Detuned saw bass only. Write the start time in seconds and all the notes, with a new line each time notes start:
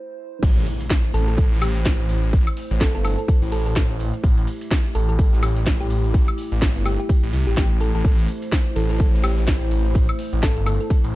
0.43 A1
1.14 A1
1.52 A1
1.99 A1
2.71 A1
2.95 G1
3.42 A1
4.24 A1
4.95 A1
5.33 A1
5.80 A1
6.52 A1
6.76 G1
7.23 A1
7.33 C2
7.47 A1
7.57 A1
7.95 A1
8.05 A1
8.76 A1
9.14 A1
9.61 A1
10.33 A1
10.57 G1
11.04 A1